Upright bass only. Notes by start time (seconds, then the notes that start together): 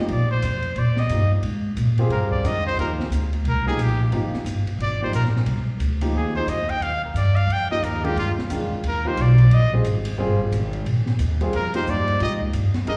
0.10 A#1
0.43 F2
0.76 A#2
1.09 G2
1.43 G#2
1.76 A#2
2.09 G2
2.43 F2
2.77 D#2
3.10 D2
3.44 C2
3.78 A#1
4.11 G#1
4.34 muted upright bass stroke
4.44 G1
4.78 G#1
5.13 A#1
5.46 C2
5.66 muted upright bass stroke
5.79 D2
6.12 D#2
6.47 F2
6.68 muted upright bass stroke
6.80 D#2
7.02 muted upright bass stroke
7.14 G2
7.47 F2
7.82 D#2
8.16 G2
8.38 muted upright bass stroke
8.50 F2
8.72 muted upright bass stroke
8.83 D#2
9.17 B1
9.51 A#1
9.85 G#1
10.18 G1
10.52 G#1
10.85 A#1
11.19 D#2
11.53 F2
11.87 G2
12.20 G#2
12.53 G2
12.75 muted upright bass stroke
12.88 F2